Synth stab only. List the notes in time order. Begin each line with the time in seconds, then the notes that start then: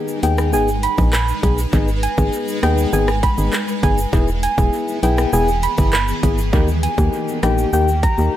Already playing: B3 D#4 G#4
0.23 B3 D#4 G#4
0.53 B3 D#4 G#4
0.98 B3 D#4 G#4
1.43 B3 D#4 G#4
1.73 B3 D#4 G#4
2.18 B3 D#4 G#4
2.63 B3 D#4 G#4
2.93 B3 D#4 G#4
3.38 B3 D#4 G#4
3.83 B3 D#4 G#4
4.13 B3 E4 G#4
4.58 B3 E4 G#4
5.03 B3 E4 G#4
5.33 B3 E4 G#4
5.78 B3 E4 G#4
6.23 B3 E4 G#4
6.53 A#3 D#4 G4
6.98 A#3 D#4 G4
7.43 A#3 D#4 G4
7.73 A#3 D#4 G4
8.18 A#3 D#4 G4